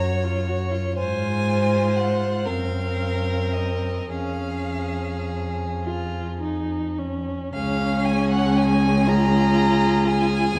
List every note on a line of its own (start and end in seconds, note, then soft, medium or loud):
0.00 0.81 F#2 medium
0.00 0.26 F#4 soft
0.00 0.94 C#5 medium
0.24 0.50 F4 medium
0.48 0.72 F#4 soft
0.71 0.96 F4 soft
0.97 2.48 G#2 medium
0.97 2.48 F4 medium
0.97 2.47 C5 medium
0.97 1.98 G#5 medium
1.96 2.48 F#5 medium
2.46 4.10 F#2 medium
2.46 4.11 C4 medium
2.46 4.11 A#4 medium
2.46 3.55 F5 medium
3.53 4.12 D#5 medium
4.10 7.29 F2 medium
4.10 5.72 C#4 medium
4.10 6.67 G#4 medium
4.10 5.84 F5 medium
5.84 6.38 F4 medium
6.41 7.00 D#4 medium
6.99 7.53 C#4 medium
7.53 10.53 C#2 loud
7.53 9.09 C#4 medium
7.53 10.59 G#4 medium
7.53 8.06 F5 loud
8.05 8.31 G#5 loud
8.32 8.58 F#5 loud
8.56 9.10 G#5 loud
9.07 10.56 F4 medium
9.07 10.09 A#5 loud
10.07 10.59 G#5 loud